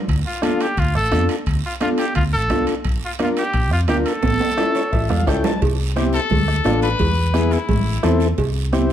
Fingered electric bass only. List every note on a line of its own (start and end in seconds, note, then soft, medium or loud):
0.08 0.22 D2 medium
0.77 0.97 D2 medium
0.95 1.14 A1 medium
1.12 1.26 F2 medium
1.46 1.60 D2 medium
2.16 2.35 D2 medium
2.34 2.50 A1 medium
2.50 2.64 C2 medium
2.85 2.99 A#1 loud
3.54 3.71 A#1 medium
3.71 3.89 F2 medium
3.89 4.03 D2 medium
4.23 4.37 A1 loud
4.92 5.10 A1 medium
5.10 5.27 E2 medium
5.27 5.41 C#2 medium
5.62 6.17 C2 loud
6.31 6.58 D2 medium
6.65 6.93 A1 medium
7.00 7.55 E2 medium
7.69 7.96 A1 medium
8.04 8.31 E2 medium
8.38 8.93 C2 loud